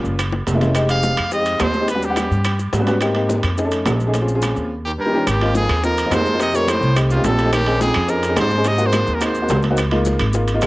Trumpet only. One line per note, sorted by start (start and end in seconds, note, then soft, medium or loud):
0.90 1.30 F5 loud
1.33 1.64 D#5 medium
1.62 1.90 C5 medium
1.90 2.06 B4 medium
2.05 2.60 G4 medium
4.85 4.92 G4 medium
5.00 5.29 A#4 medium
5.28 5.56 G4 medium
5.57 5.82 G#4 loud
5.85 6.15 A#4 medium
6.14 6.41 C5 loud
6.42 6.57 D#5 loud
6.56 6.72 C#5 loud
6.70 6.97 C5 medium
7.12 7.27 F4 medium
7.25 7.53 A4 medium
7.54 7.80 G4 loud
7.82 8.11 G#4 medium
8.10 8.37 A#4 medium
8.39 8.69 C5 loud
8.67 8.88 D#5 medium
8.86 9.16 C5 medium
9.14 9.23 A#4 medium
9.25 9.63 C5 medium